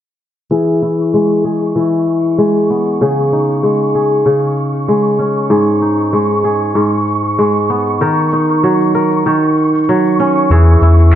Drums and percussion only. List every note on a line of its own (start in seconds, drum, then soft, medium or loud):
0.51 cabasa soft
0.82 cabasa medium
0.99 cabasa soft
1.13 cabasa soft
1.31 cabasa soft
1.44 cabasa medium
1.62 cabasa soft
1.76 cabasa soft
1.93 cabasa soft
2.07 cabasa medium
2.24 cabasa soft
2.38 cabasa soft
2.70 cabasa medium
2.87 cabasa soft
3.01 cabasa soft
3.32 cabasa medium
3.49 cabasa soft
3.63 cabasa soft
3.81 cabasa soft
3.94 cabasa medium
4.12 cabasa soft
4.26 cabasa soft
4.43 cabasa soft
4.57 cabasa medium
4.75 cabasa soft
4.89 cabasa soft
5.07 cabasa soft
5.20 cabasa medium
5.38 cabasa soft
5.51 cabasa soft
5.82 cabasa medium
6.00 cabasa soft
6.31 cabasa soft
6.45 cabasa medium
6.62 cabasa soft
6.65 cabasa soft
6.72 cabasa soft
6.76 cabasa soft
6.82 cabasa soft
6.86 cabasa soft
6.93 cabasa soft
7.07 cabasa medium
7.25 cabasa soft
7.38 cabasa soft
7.56 cabasa soft
7.59 cabasa soft
7.65 cabasa soft
7.70 cabasa medium
7.80 cabasa soft
7.87 cabasa soft
8.01 cabasa soft
8.31 cabasa medium
8.49 cabasa soft
8.80 cabasa soft
8.95 cabasa medium
9.12 cabasa soft
9.25 cabasa soft
9.43 cabasa soft
9.57 cabasa soft
9.63 cabasa soft
9.67 cabasa soft
9.75 cabasa medium
9.78 cabasa medium
9.84 cabasa medium
9.89 cabasa soft
10.06 cabasa soft
10.20 cabasa medium
10.37 cabasa soft
10.51 cabasa soft
10.82 cabasa medium
11.00 cabasa soft